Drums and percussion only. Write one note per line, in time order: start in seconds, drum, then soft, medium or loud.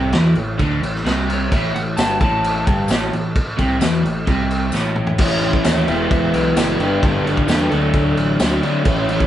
0.13 snare loud
0.13 crash medium
0.35 crash medium
0.59 kick loud
0.59 crash medium
0.83 crash medium
0.95 snare soft
1.06 snare loud
1.06 crash medium
1.30 crash medium
1.52 kick loud
1.52 crash medium
1.75 crash medium
1.97 snare loud
1.97 tambourine medium
1.97 crash medium
2.21 kick loud
2.21 crash medium
2.44 crash medium
2.67 kick loud
2.67 crash medium
2.88 snare loud
2.88 tambourine loud
2.88 crash medium
3.13 crash medium
3.36 kick loud
3.36 crash medium
3.59 kick loud
3.59 crash medium
3.81 snare loud
3.81 tambourine loud
3.81 crash medium
4.05 crash medium
4.27 kick loud
4.27 crash medium
4.51 crash medium
4.72 snare medium
4.72 tambourine medium
4.96 mid tom medium
5.07 floor tom loud
5.18 kick loud
5.18 crash loud
5.18 crash medium
5.41 crash medium
5.53 kick loud
5.64 snare loud
5.64 tambourine loud
5.64 crash medium
5.88 crash medium
6.11 kick loud
6.11 crash medium
6.34 crash medium
6.56 snare loud
6.56 tambourine loud
6.56 crash medium
6.80 crash medium
7.03 kick loud
7.03 crash medium
7.27 crash medium
7.37 kick medium
7.48 snare loud
7.48 tambourine loud
7.48 crash medium
7.71 crash medium
7.93 kick loud
7.93 crash medium
8.17 crash medium
8.40 snare loud
8.40 tambourine medium
8.40 crash medium
8.63 crash medium
8.85 kick loud
8.85 crash loud
9.09 crash medium
9.20 kick loud